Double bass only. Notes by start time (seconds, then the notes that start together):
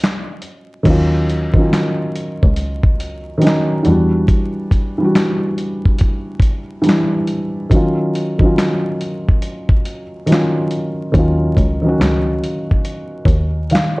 Already playing: C#2
0.86 D#2
2.43 C#2
3.86 E2
11.14 D#2
11.57 C#2
12.00 C#2
13.26 D#2
13.71 D#3